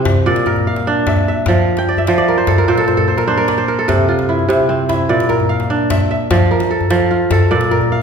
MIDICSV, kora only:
0, 0, Header, 1, 2, 480
1, 0, Start_track
1, 0, Tempo, 403226
1, 1746, Time_signature, 12, 3, 24, 8
1, 9552, End_track
2, 0, Start_track
2, 0, Title_t, "Kora"
2, 0, Program_c, 0, 46
2, 0, Note_on_c, 0, 48, 84
2, 0, Note_on_c, 0, 60, 69
2, 0, Note_on_c, 0, 62, 78
2, 0, Note_on_c, 0, 64, 67
2, 0, Note_on_c, 0, 65, 63
2, 0, Note_on_c, 0, 67, 68
2, 0, Note_on_c, 0, 69, 65
2, 144, Note_off_c, 0, 62, 0
2, 201, Note_off_c, 0, 69, 0
2, 311, Note_on_c, 0, 46, 86
2, 312, Note_on_c, 0, 74, 70
2, 366, Note_off_c, 0, 48, 0
2, 430, Note_off_c, 0, 67, 0
2, 555, Note_on_c, 0, 70, 72
2, 799, Note_on_c, 0, 77, 69
2, 870, Note_off_c, 0, 64, 0
2, 903, Note_off_c, 0, 65, 0
2, 1038, Note_on_c, 0, 62, 83
2, 1284, Note_on_c, 0, 76, 63
2, 1522, Note_off_c, 0, 76, 0
2, 1526, Note_on_c, 0, 76, 67
2, 1598, Note_off_c, 0, 77, 0
2, 1631, Note_off_c, 0, 74, 0
2, 1765, Note_on_c, 0, 53, 81
2, 1806, Note_off_c, 0, 46, 0
2, 1967, Note_off_c, 0, 60, 0
2, 2070, Note_off_c, 0, 70, 0
2, 2124, Note_on_c, 0, 79, 75
2, 2243, Note_on_c, 0, 74, 67
2, 2352, Note_off_c, 0, 76, 0
2, 2357, Note_on_c, 0, 76, 71
2, 2464, Note_off_c, 0, 53, 0
2, 2478, Note_on_c, 0, 53, 85
2, 2479, Note_on_c, 0, 72, 71
2, 2588, Note_off_c, 0, 74, 0
2, 2593, Note_on_c, 0, 74, 73
2, 2718, Note_on_c, 0, 70, 71
2, 2824, Note_off_c, 0, 72, 0
2, 2828, Note_on_c, 0, 72, 71
2, 2952, Note_on_c, 0, 69, 73
2, 3024, Note_off_c, 0, 70, 0
2, 3037, Note_off_c, 0, 62, 0
2, 3072, Note_on_c, 0, 70, 73
2, 3188, Note_off_c, 0, 72, 0
2, 3191, Note_on_c, 0, 46, 87
2, 3193, Note_on_c, 0, 72, 73
2, 3233, Note_off_c, 0, 79, 0
2, 3246, Note_off_c, 0, 53, 0
2, 3262, Note_off_c, 0, 69, 0
2, 3307, Note_on_c, 0, 69, 74
2, 3379, Note_off_c, 0, 70, 0
2, 3418, Note_off_c, 0, 72, 0
2, 3423, Note_on_c, 0, 72, 71
2, 3532, Note_off_c, 0, 69, 0
2, 3537, Note_on_c, 0, 69, 73
2, 3588, Note_off_c, 0, 76, 0
2, 3659, Note_off_c, 0, 72, 0
2, 3664, Note_on_c, 0, 72, 70
2, 3778, Note_on_c, 0, 70, 75
2, 3850, Note_off_c, 0, 69, 0
2, 3895, Note_off_c, 0, 72, 0
2, 3899, Note_on_c, 0, 62, 79
2, 3900, Note_on_c, 0, 72, 72
2, 3912, Note_off_c, 0, 74, 0
2, 4012, Note_off_c, 0, 70, 0
2, 4017, Note_on_c, 0, 70, 81
2, 4140, Note_on_c, 0, 74, 73
2, 4253, Note_off_c, 0, 72, 0
2, 4257, Note_on_c, 0, 72, 71
2, 4377, Note_off_c, 0, 70, 0
2, 4382, Note_on_c, 0, 70, 72
2, 4507, Note_on_c, 0, 69, 66
2, 4619, Note_on_c, 0, 48, 85
2, 4685, Note_off_c, 0, 46, 0
2, 4863, Note_on_c, 0, 65, 68
2, 5104, Note_on_c, 0, 64, 68
2, 5325, Note_off_c, 0, 48, 0
2, 5339, Note_on_c, 0, 48, 83
2, 5459, Note_off_c, 0, 74, 0
2, 5583, Note_on_c, 0, 60, 66
2, 5671, Note_off_c, 0, 72, 0
2, 5816, Note_off_c, 0, 64, 0
2, 5820, Note_on_c, 0, 64, 69
2, 5892, Note_off_c, 0, 65, 0
2, 5897, Note_off_c, 0, 70, 0
2, 5899, Note_off_c, 0, 62, 0
2, 6062, Note_on_c, 0, 46, 85
2, 6064, Note_on_c, 0, 74, 70
2, 6125, Note_off_c, 0, 48, 0
2, 6133, Note_off_c, 0, 69, 0
2, 6297, Note_on_c, 0, 70, 72
2, 6538, Note_on_c, 0, 77, 70
2, 6610, Note_off_c, 0, 64, 0
2, 6786, Note_on_c, 0, 62, 80
2, 7029, Note_on_c, 0, 76, 68
2, 7265, Note_off_c, 0, 76, 0
2, 7270, Note_on_c, 0, 76, 69
2, 7341, Note_off_c, 0, 77, 0
2, 7383, Note_off_c, 0, 74, 0
2, 7510, Note_on_c, 0, 53, 86
2, 7565, Note_off_c, 0, 46, 0
2, 7725, Note_off_c, 0, 60, 0
2, 7745, Note_off_c, 0, 70, 0
2, 7749, Note_on_c, 0, 70, 63
2, 7982, Note_on_c, 0, 69, 62
2, 8205, Note_off_c, 0, 53, 0
2, 8219, Note_on_c, 0, 53, 79
2, 8291, Note_off_c, 0, 76, 0
2, 8460, Note_on_c, 0, 65, 66
2, 8705, Note_off_c, 0, 69, 0
2, 8710, Note_on_c, 0, 69, 66
2, 8782, Note_off_c, 0, 70, 0
2, 8785, Note_off_c, 0, 62, 0
2, 8937, Note_on_c, 0, 46, 82
2, 8943, Note_on_c, 0, 74, 69
2, 9005, Note_off_c, 0, 53, 0
2, 9181, Note_on_c, 0, 70, 71
2, 9252, Note_off_c, 0, 69, 0
2, 9427, Note_on_c, 0, 77, 67
2, 9552, Note_off_c, 0, 46, 0
2, 9552, Note_off_c, 0, 65, 0
2, 9552, Note_off_c, 0, 70, 0
2, 9552, Note_off_c, 0, 74, 0
2, 9552, Note_off_c, 0, 77, 0
2, 9552, End_track
0, 0, End_of_file